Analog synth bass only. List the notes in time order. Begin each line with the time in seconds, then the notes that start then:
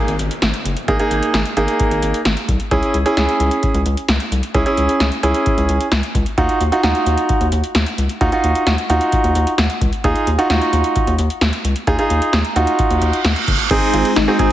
0.08 G#1
0.20 G#1
0.42 G#1
0.65 F#1
0.88 G#1
1.11 G#1
1.34 G#1
1.57 G#1
1.91 G#1
2.03 G#1
2.26 G#1
2.48 C2
2.71 C#2
2.94 C#2
3.17 C#2
3.40 C#2
3.74 C#2
3.86 C#2
4.09 C#2
4.32 C2
4.55 C#2
4.77 C#2
5.00 C#2
5.23 C#2
5.58 C#2
5.69 C#2
5.92 C#2
6.15 C#2
6.38 D#2
6.61 D#2
6.83 D#2
7.06 D#2
7.41 D#2
7.52 D#2
7.75 D#2
7.98 C#2
8.21 D#2
8.44 D#2
8.67 D#2
8.90 D#2
9.24 D#2
9.36 D#2
9.58 D#2
9.81 C#2
10.04 D#2
10.27 D#2
10.50 D#2
10.73 D#2
11.07 D#2
11.19 D#2
11.41 D#2
11.64 C#2
11.87 D#2
12.10 D#2
12.33 D#2
12.56 D#2
12.90 D#2
13.02 D#2
13.25 D#2
13.48 F#1
13.71 G#1
13.94 G#1
14.16 G#1
14.39 G#1